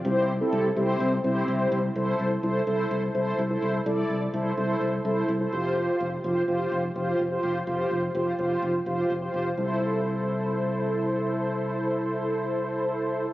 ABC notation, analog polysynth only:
X:1
M:4/4
L:1/16
Q:1/4=126
K:C
V:1 name="Analog polysynth"
[CEGc]2 z [CEGA]2 z [CEGc]3 z [CEGc]4- [CEGc] z | [EAc]3 z [EAc]2 [EAc]3 z [EAc]2 z [EAc]2 z | [EAd]3 z [EAc]2 [EAc]3 z [EAc]2 z [EAc] [FGc]2- | [FGc]3 z [FGc]2 [FGc]3 z [FGc]2 z [FGc]2 z |
[FGc]3 z [FGc]2 [FGc]3 z [FGc]2 z [FGc]2 z | [EAc]16- | [EAc]16 |]